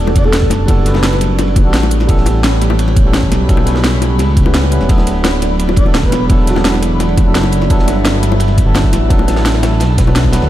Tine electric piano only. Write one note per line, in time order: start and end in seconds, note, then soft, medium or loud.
0.00 0.22 G3 medium
0.00 0.22 B3 medium
0.00 0.23 D4 medium
0.00 0.23 F#4 medium
0.00 0.23 A4 loud
0.23 0.65 G3 medium
0.23 0.66 B3 medium
0.23 0.66 D4 medium
0.23 0.67 F#4 medium
0.23 0.67 A4 medium
0.67 1.62 G3 medium
0.67 1.62 B3 medium
0.67 1.63 D4 medium
0.67 1.63 F#4 medium
0.67 1.64 A4 loud
1.63 2.06 G3 medium
1.63 2.06 B3 medium
1.63 2.07 D4 medium
1.63 2.07 F#4 medium
1.63 2.08 A4 medium
2.07 3.02 G3 medium
2.07 3.03 B3 medium
2.07 3.03 C#4 medium
2.07 3.04 E4 medium
2.07 3.04 A4 loud
3.04 3.46 G3 medium
3.04 3.47 B3 medium
3.04 3.47 C#4 medium
3.04 3.48 E4 medium
3.04 3.48 A4 medium
3.47 4.43 G3 medium
3.47 4.43 B3 medium
3.47 4.44 C#4 medium
3.47 4.44 E4 medium
3.47 4.45 A4 loud
4.45 4.69 G3 medium
4.45 4.70 B3 medium
4.45 4.70 C#4 medium
4.45 4.70 E4 medium
4.45 4.70 B4 medium
4.71 4.81 G3 medium
4.71 4.81 B3 medium
4.71 4.81 C#4 medium
4.71 4.81 E4 medium
4.71 4.81 B4 medium
4.87 5.83 F#3 medium
4.87 5.83 B3 medium
4.87 5.84 D4 medium
4.87 5.84 E4 medium
4.87 5.85 A4 medium
5.84 6.27 F#3 medium
5.84 6.27 B3 medium
5.84 6.28 D4 medium
5.84 6.28 E4 medium
5.84 6.29 A4 medium
6.28 7.23 F#3 medium
6.28 7.24 B3 medium
6.28 7.24 D4 medium
6.28 7.25 E4 medium
6.28 7.25 A4 loud
7.24 7.67 F#3 medium
7.24 7.68 B3 medium
7.24 7.68 D4 medium
7.24 7.68 E4 medium
7.24 7.69 A4 medium
7.68 8.64 F#3 medium
7.68 8.64 B3 medium
7.68 8.65 D4 medium
7.68 8.65 E4 medium
7.68 8.66 A4 loud
8.65 9.08 F#3 medium
8.65 9.08 B3 medium
8.65 9.08 D4 medium
8.65 9.09 E4 medium
8.65 9.09 A4 medium
9.09 10.04 F#3 medium
9.09 10.05 B3 medium
9.09 10.05 D4 medium
9.09 10.06 E4 medium
9.09 10.06 A4 loud
10.06 10.31 F#3 medium
10.06 10.31 B3 medium
10.06 10.31 D4 medium
10.06 10.31 E4 medium
10.06 10.32 B4 loud
10.33 10.42 F#3 medium
10.33 10.42 B3 medium
10.33 10.42 D4 medium
10.33 10.43 E4 medium
10.33 10.43 B4 medium